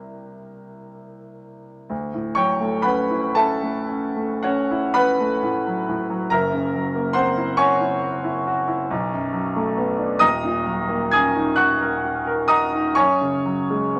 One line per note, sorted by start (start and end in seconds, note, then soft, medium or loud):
0.00 1.84 C2 soft
0.00 1.84 G3 soft
0.00 1.85 A#3 soft
0.00 1.85 C4 soft
0.00 1.86 D4 soft
0.00 1.36 E4 medium
0.00 1.36 A#4 medium
0.00 1.39 E5 medium
1.90 6.26 D2 soft
2.14 2.52 A2 soft
2.35 2.76 F#3 soft
2.35 2.82 C#5 medium
2.35 2.82 G5 medium
2.35 2.85 C#6 medium
2.61 3.01 A3 soft
2.82 3.26 C#4 soft
2.82 3.32 B4 medium
2.82 3.32 F#5 medium
2.82 3.35 B5 medium
3.10 3.52 E4 soft
3.35 3.79 C#4 medium
3.35 4.40 A4 medium
3.35 4.40 E5 medium
3.35 4.43 A5 medium
3.63 4.06 A3 soft
3.89 4.33 C#4 soft
4.16 4.60 A3 soft
4.43 4.86 C#4 soft
4.43 4.92 F#4 medium
4.43 4.92 C#5 medium
4.43 4.93 F#5 medium
4.71 5.10 E4 medium
4.94 5.34 C#4 soft
4.94 6.26 B4 medium
4.94 6.26 F#5 medium
4.94 6.30 B5 loud
5.20 5.57 A3 soft
5.43 5.79 A2 soft
5.66 6.01 F#3 soft
5.89 6.23 A2 medium
6.10 6.31 F#3 soft
6.30 8.87 F#1 medium
6.30 8.88 F#2 medium
6.30 7.12 A#4 medium
6.30 7.13 E5 medium
6.30 7.16 A#5 medium
6.53 6.87 C#3 soft
6.74 7.08 F#3 soft
6.95 7.29 A#3 medium
7.13 7.50 C4 soft
7.13 7.56 C5 medium
7.13 7.55 F#5 medium
7.13 7.58 C6 medium
7.37 7.72 E4 medium
7.57 7.94 F#4 medium
7.57 9.73 C#5 medium
7.57 9.73 G#5 medium
7.57 9.76 C#6 loud
7.80 8.16 E4 medium
8.03 8.38 F#4 soft
8.24 8.60 E4 medium
8.47 8.82 F#4 medium
8.68 8.90 E4 medium
8.90 10.18 B1 medium
9.13 9.47 F#2 medium
9.33 9.68 F#3 medium
9.56 9.91 A3 medium
9.77 10.13 B3 medium
9.99 10.21 D4 medium
10.19 12.92 D#1 medium
10.19 12.92 D#2 medium
10.19 11.07 D#5 medium
10.19 11.07 A#5 medium
10.19 11.11 D#6 loud
10.44 10.80 A#2 soft
10.66 11.02 F#3 soft
10.89 11.26 A#3 soft
11.11 11.49 C#4 medium
11.11 11.55 G#5 medium
11.11 11.55 D#6 medium
11.11 11.58 G#6 medium
11.35 11.72 D#4 medium
11.56 11.94 F#4 medium
11.56 12.44 F#5 medium
11.56 12.45 C#6 medium
11.56 12.48 F#6 medium
11.81 12.17 A#4 medium
12.04 12.40 F#4 soft
12.26 12.63 A#4 medium
12.48 12.87 F#4 medium
12.48 12.93 D#5 medium
12.48 12.93 A#5 medium
12.48 12.96 D#6 loud
12.73 12.97 D#4 medium
12.95 14.00 F#2 medium
12.95 14.00 C#5 medium
12.95 14.00 G#5 medium
12.95 14.00 C#6 loud
13.21 13.61 C#3 soft
13.45 13.86 F#3 soft
13.70 14.00 G#3 soft
13.95 14.00 B3 medium